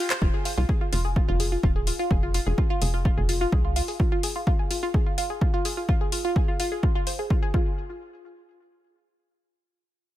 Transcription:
0.10 C5 C6, clap, open hi-hat, shaker
0.22 F1 F4, kick
0.34 G#4
0.45 F4, open hi-hat
0.58 C2 F4
0.69 G#4, kick
0.81 F4
0.93 F1 F4, open hi-hat
1.05 G#4
1.16 F4, kick
1.28 F1 F4
1.40 G#4, open hi-hat
1.52 F4
1.63 D#1 F4, kick
1.76 G#4
1.87 F4, open hi-hat
1.99 F4
2.11 F1 G#4, kick
2.23 F4
2.34 F4, open hi-hat
2.46 F1 G#4
2.58 F4, kick
2.70 F4
2.82 F1 G#4, open hi-hat
2.94 F4
3.05 F4, kick
3.17 F1 G#4
3.29 F4, open hi-hat
3.41 F4
3.52 C2 G#4, kick
3.65 F4
3.76 F4, open hi-hat
3.88 G#4, open hi-hat
4.00 F4, kick
4.12 F4
4.23 G#4, open hi-hat
4.36 F4
4.47 F4, kick
4.59 G#4
4.71 F4, open hi-hat
4.83 F4
4.94 G#4, kick
5.06 F4
5.18 F4, open hi-hat
5.30 G#4
5.41 F4, kick
5.54 F4
5.65 G#4, open hi-hat
5.77 F4
5.89 F4, kick
6.01 G#4
6.12 F4, open hi-hat
6.25 F4
6.36 G#4, kick
6.48 F4
6.60 F4, open hi-hat
6.72 G#4
6.83 F4, kick
6.95 F4
7.07 C5, open hi-hat
7.19 G#4
7.30 F4, kick
7.43 G#4
7.54 F4, kick

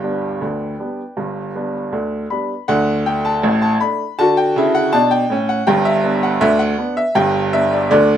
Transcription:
Already playing: G1 G2 B4 D5 G5
0.03 G3 B3 D4
0.41 D2 D3
0.79 G3 B3 D4
1.17 G1 G2
1.55 G3 B3 D4
1.92 D2 D3
2.30 G3 B3 D4 B5
2.68 D2 D3 F#5
3.06 A3 D4 G5
3.25 A5
3.43 A1 A2
3.62 A5
3.81 A3 D4 B5
4.19 D3 F#4 A5
4.37 G5
4.56 C#3 E4
4.75 F#5
4.93 B2 D4 A5
5.11 G5
5.30 A2 C#4
5.49 F#5
5.67 G1 G2 G5
5.85 E5
6.04 B3 D4
6.23 F#5
6.41 D2 D3 E5
6.59 F#5
6.78 B3 D4
6.97 E5
7.15 G1 G2 G5
7.53 B3 D4 E5
7.73 D5
7.91 D2 D3 D5

